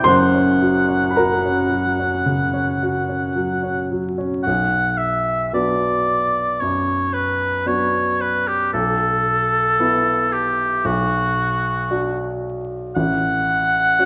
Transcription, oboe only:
0.08 F#5
4.43 F#5
4.97 E5
5.54 D5
6.60 C#5
7.13 B4
7.67 C#5
8.21 B4
8.48 G4
8.73 A4
10.33 G4
10.86 F#4
12.95 F#5

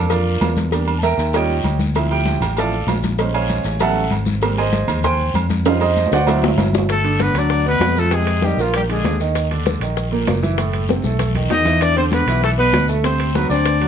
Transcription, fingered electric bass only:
Already playing: F2
0.41 E2
1.18 D#2
1.64 D2
2.41 A1
2.87 A#1
3.65 A1
4.11 G#1
4.88 D#2
5.34 F2
6.12 D2
6.56 G1
7.34 D2
7.80 F2
8.57 A#1
9.04 D#2
9.80 A#1
10.27 F#1
11.04 B1
11.50 E2
12.26 B1
12.73 D2
13.50 D2

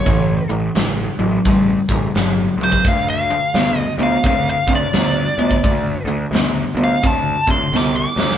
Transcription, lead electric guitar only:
Already playing: C#5
2.64 C5
2.88 F5
3.10 F5
3.78 D#5
4.03 F5
4.27 F5
4.50 F5
4.75 D5
6.84 F5
7.07 A5
7.50 C6
7.77 D6
7.96 D6

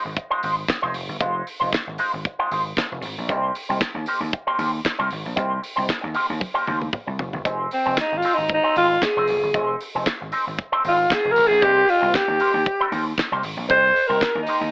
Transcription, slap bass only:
0.05 G#1
0.43 G#1
0.83 F1
0.94 F1
1.08 G1
1.21 F1
1.61 F1
1.87 G#1
2.13 G#1
2.51 G#1
2.92 F1
3.04 G#1
3.18 A#1
3.30 C2
3.69 C2
3.94 D#2
4.20 D#2
4.58 D#2
4.99 C2
5.12 G#1
5.25 A#1
5.38 C2
5.78 C2
6.03 D#2
6.30 D#2
6.68 D#2
7.07 C2
7.19 F1
7.33 G1
7.46 F1
7.86 F1
8.12 G#1
8.38 G#1
8.76 G#1
9.16 F1
9.29 F1
9.43 G1
9.54 F1
9.95 F1
10.21 G#1
10.47 G#1
10.84 G#1
11.25 F1
11.37 G#1
11.50 A#1
11.63 C2
12.02 C2
12.28 D#2
12.54 D#2
12.92 D#2
13.31 C2
13.44 G#1
13.57 A#1
13.70 C2
14.09 C2
14.35 D#2
14.61 D#2

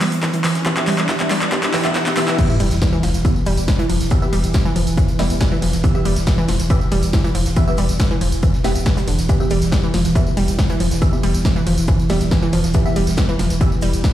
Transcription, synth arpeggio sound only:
0.01 G3
0.23 E3
0.34 E3
0.44 E3
0.66 E3
0.88 G3
1.09 E3
1.31 G3
1.52 E3
1.74 E3
1.95 E3
2.17 E3
2.39 E3
2.60 G3
2.82 E3
2.93 E3
3.03 F3
3.25 E3
3.46 G3
3.68 E3
3.79 E3
3.90 F3
4.11 E3
4.33 G3
4.54 E3
4.65 E3
4.76 F3
4.97 E3
5.19 G3
5.41 E3
5.52 E3
5.62 F3
5.84 E3
6.05 G3
6.27 E3
6.38 E3
6.49 F3
6.70 E3
6.92 G3
7.13 E3
7.24 E3
7.35 F3
7.56 E3
7.78 G3
8.00 E3
8.11 E3
8.21 F3
8.43 E3
8.64 B3
8.86 E3
8.97 G3
9.08 D3
9.29 E3
9.51 G3
9.72 E3
9.83 E3
9.94 F3
10.16 E3
10.37 G3
10.59 E3
10.70 E3
10.80 F3
11.02 E3
11.23 G3
11.45 E3
11.56 E3
11.67 F3
11.88 E3
12.10 G3
12.31 E3
12.42 E3
12.53 F3
12.74 E3
12.96 G3
13.18 E3
13.29 E3
13.39 F3
13.61 E3
13.82 G3
14.04 E3

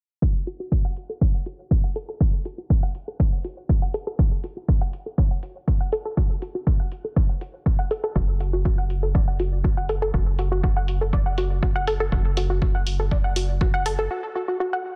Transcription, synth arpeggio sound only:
0.22 F#4
0.47 F#4
0.60 F#4
0.72 F#4
0.85 F#5
1.09 A4
1.21 C#5
1.34 F#5
1.46 F#4
1.71 F#4
1.84 F#5
1.96 A4
2.09 A4
2.21 F#4
2.45 F#4
2.58 F#4
2.70 F#4
2.83 F#5
3.08 A4
3.20 C#5
3.32 F#5
3.44 F#4
3.69 F#4
3.82 F#5
3.94 A4
4.07 A4
4.19 F#4
4.44 F#4
4.57 F#4
4.69 F#4
4.81 F#5
5.06 A4
5.18 C#5
5.31 F#5
5.43 F#4
5.68 F#4
5.80 F#5
5.92 A4
6.05 A4
6.17 F#4
6.42 F#4
6.55 F#4
6.67 F#4
6.80 F#5
7.05 A4
7.16 C#5
7.29 F#5
7.41 F#4
7.66 F#4
7.79 F#5
7.91 A4
8.04 A4
8.16 F#4
8.40 F#4
8.53 F#4
8.65 F#4
8.78 F#5
9.03 A4
9.15 D5
9.28 F#5
9.40 F#4
9.64 F#4
9.77 F#5
9.89 A4
10.02 A4
10.14 F#4
10.39 F#4
10.52 F#4
10.64 F#4
10.77 F#5
11.01 A4
11.13 D5
11.26 F#5
11.38 F#4
11.63 F#4
11.76 F#5
11.88 A4
12.00 A4
12.12 F#4
12.37 F#4
12.50 F#4
12.62 F#4
12.75 F#5
12.99 A4
13.11 D5
13.24 F#5
13.36 F#4
13.61 F#4
13.74 F#5
13.86 A4
13.99 A4
14.11 F#4
14.35 F#4
14.48 F#4
14.60 F#4
14.73 F#5

